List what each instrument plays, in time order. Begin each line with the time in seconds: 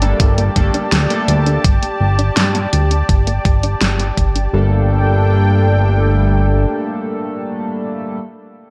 Already playing: analog synth bass G1, analog synth pad G4 D5 A5
0.02 analog polysynth G3 A3 A#3 D4 A4, synth arpeggio sound D4, closed hi-hat
0.20 analog synth bass G1, synth arpeggio sound G3, kick, closed hi-hat
0.38 synth arpeggio sound A#3, closed hi-hat
0.56 analog synth bass G1, analog polysynth G3 A3 A#3 D4 A4, synth arpeggio sound G3, kick, closed hi-hat
0.74 synth arpeggio sound D4, closed hi-hat
0.92 analog synth bass D2, synth arpeggio sound G3, snare, closed hi-hat
1.10 analog polysynth G3 A3 A#3 D4 A4, synth arpeggio sound A#3, closed hi-hat
1.28 analog synth bass D2, synth arpeggio sound G3, closed hi-hat
1.46 synth arpeggio sound D4, closed hi-hat
1.64 analog synth bass G1, synth arpeggio sound G3, kick, closed hi-hat
1.82 synth arpeggio sound A#3, closed hi-hat
2.00 analog synth bass G1, synth arpeggio sound G3
2.19 synth arpeggio sound D4, closed hi-hat
2.37 analog synth bass G2, synth arpeggio sound G3, snare, closed hi-hat
2.55 synth arpeggio sound A#3, closed hi-hat
2.73 analog synth bass D2, synth arpeggio sound G3, closed hi-hat
2.91 synth arpeggio sound D4, closed hi-hat
3.09 analog synth bass G1, synth arpeggio sound G3, kick, closed hi-hat
3.27 synth arpeggio sound A#3, closed hi-hat
3.45 analog synth bass G1, synth arpeggio sound G3, kick, closed hi-hat
3.63 synth arpeggio sound D4, closed hi-hat
3.81 analog synth bass G1, synth arpeggio sound G3, snare, closed hi-hat
3.99 synth arpeggio sound A#3, closed hi-hat
4.17 analog synth bass G1, synth arpeggio sound G3, kick, closed hi-hat
4.36 synth arpeggio sound D4, closed hi-hat
4.53 analog synth bass G1, analog synth pad G3 D4 A4 G5, synth arpeggio sound G3, analog polysynth G3 A3 A#3 D4 A4